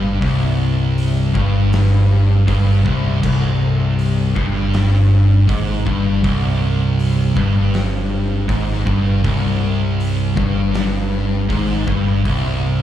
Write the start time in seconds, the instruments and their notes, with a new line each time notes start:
Already playing: fingered electric bass G1, distorted electric guitar G2
0.21 fingered electric bass C1, distorted electric guitar C2, kick, open hi-hat
0.98 open hi-hat
1.34 fingered electric bass G1, distorted electric guitar G2, kick
1.73 snare, open hi-hat
2.47 fingered electric bass G1, distorted electric guitar G2, kick, open hi-hat
2.85 fingered electric bass C1, distorted electric guitar C2, kick
3.22 fingered electric bass C1, distorted electric guitar C2, kick, crash
3.99 open hi-hat
4.35 fingered electric bass G1, distorted electric guitar G2, kick
4.74 snare, open hi-hat
5.47 fingered electric bass G#1, distorted electric guitar G#2, kick, open hi-hat
5.85 fingered electric bass G1, distorted electric guitar G2, kick
6.23 fingered electric bass C1, distorted electric guitar C2, kick, open hi-hat
6.99 open hi-hat
7.35 fingered electric bass G1, distorted electric guitar G2, kick
7.74 snare, open hi-hat
8.49 fingered electric bass G#1, distorted electric guitar G#2, kick, open hi-hat
8.69 snare
8.86 fingered electric bass G1, distorted electric guitar G2, kick
9.23 fingered electric bass C1, distorted electric guitar C2, kick, open hi-hat
10.00 open hi-hat
10.36 fingered electric bass G1, distorted electric guitar G2, kick
10.74 snare, open hi-hat
11.49 fingered electric bass G#1, distorted electric guitar G#2, kick, open hi-hat
11.70 snare
11.87 fingered electric bass G1, distorted electric guitar G2, kick
12.24 fingered electric bass C1, distorted electric guitar C2, kick, open hi-hat